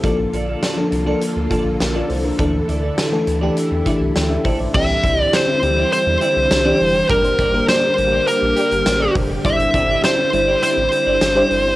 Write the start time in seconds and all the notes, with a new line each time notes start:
0.03 A#1 D3 F3 A#3 D4 F4 A4 D5, kick, closed hi-hat
0.18 muted clean electric guitar stroke
0.33 A#1 F4 A4 D5, closed hi-hat
0.48 F4 A4 D5
0.62 F4 A4 D5, snare, closed hi-hat
0.77 F3 A#3 D4 A4, muted clean electric guitar stroke
0.92 C2, muted clean electric guitar stroke, closed hi-hat
1.06 F3 A#3 D4 F4 A4 D5
1.21 closed hi-hat
1.36 D2, muted clean electric guitar stroke
1.50 F3 A#3 D4 F4 A4 D5, kick, closed hi-hat
1.65 A#1, muted clean electric guitar stroke
1.80 A#1 D4 A#4, muted clean electric guitar stroke, snare, closed hi-hat
1.95 F4 A4 D5
2.10 C2 E4 C5, muted clean electric guitar stroke, open hi-hat
2.24 D4 A#4, muted clean electric guitar stroke
2.38 D2 E3 A3 D4 E4 A4 D5, kick, closed hi-hat
2.53 muted clean electric guitar stroke
2.68 D2 E4 A4 D5, closed hi-hat
2.83 E4 A4 D5
2.98 E4 A4 D5, snare, closed hi-hat
3.12 E3 A3 D4 A4, muted clean electric guitar stroke
3.27 D2, muted clean electric guitar stroke, closed hi-hat
3.41 E3 A3 D4 E4 G4 A4 D5
3.57 closed hi-hat
3.71 E2, muted clean electric guitar stroke
3.85 E3 A3 D4 E4 A4 D5, kick, closed hi-hat
4.00 C2, muted clean electric guitar stroke
4.15 D2 G5, snare, closed hi-hat
4.30 G4 E5, muted clean electric guitar stroke
4.44 A#1 E4 A4 C5 D5, kick, open hi-hat
4.59 D5, muted clean electric guitar stroke
4.74 C2 D3 E3 G3 C4 D4 E4 G4 D5 E5, kick, crash
4.88 muted clean electric guitar stroke, closed hi-hat
5.03 C2 E4 G4 D5, kick, closed hi-hat
5.18 E4 G4 D5
5.32 E4 G4 C5 D5, snare, closed hi-hat, tambourine
5.47 muted clean electric guitar stroke
5.62 D2 D3 C4 D4 G4, muted clean electric guitar stroke, closed hi-hat
5.68 E3
5.77 E4 G4 D5
5.92 C5, closed hi-hat
6.06 E2, muted clean electric guitar stroke
6.21 E4 G4 D5, closed hi-hat
6.36 C2, muted clean electric guitar stroke
6.50 C2, muted clean electric guitar stroke, snare, closed hi-hat, tambourine
6.65 E3 C4 D4 E4 G4 D5
6.80 F1, muted clean electric guitar stroke, open hi-hat
6.95 muted clean electric guitar stroke
7.09 G1 D3 G3 A#3 D4 G4 A#4 D5, kick, closed hi-hat
7.24 G3 A#3 D4 C5, muted clean electric guitar stroke, closed hi-hat
7.38 G1 G4 A#4 D5, kick, closed hi-hat
7.53 G3 A#3 D4 G4 A#4 D5
7.68 G4 A#4 C5 D5, snare, closed hi-hat, tambourine
7.83 muted clean electric guitar stroke
7.98 A1, muted clean electric guitar stroke, closed hi-hat
8.12 G4 A#4 D5
8.27 A#4, closed hi-hat
8.42 A#1, muted clean electric guitar stroke
8.56 G4 A#4 D5, closed hi-hat
8.71 G1, muted clean electric guitar stroke, closed hi-hat
8.86 A1, muted clean electric guitar stroke, snare, closed hi-hat, tambourine
9.00 G4 A#4 D5
9.15 F1, muted clean electric guitar stroke, kick, open hi-hat
9.30 muted clean electric guitar stroke
9.44 G1 G3 C4 D4 E4 G4 C5 D5 E5, kick, closed hi-hat
9.59 muted clean electric guitar stroke, closed hi-hat
9.74 G1 E4 G4 D5, kick, closed hi-hat
9.89 E4 G4 D5
10.03 E4 G4 C5 D5, snare, closed hi-hat, tambourine
10.18 muted clean electric guitar stroke
10.33 G1 G3 D4 E4 C5, muted clean electric guitar stroke, closed hi-hat
10.48 E4 G4 D5
10.62 E4 G4 C5 D5, closed hi-hat
10.77 A1, muted clean electric guitar stroke
10.92 muted clean electric guitar stroke, closed hi-hat
11.06 G1 E4 G4 D5
11.21 G1, muted clean electric guitar stroke, snare, closed hi-hat, tambourine
11.35 G3 D4 E4 G4 C5 D5
11.51 G1, muted clean electric guitar stroke, open hi-hat
11.65 muted clean electric guitar stroke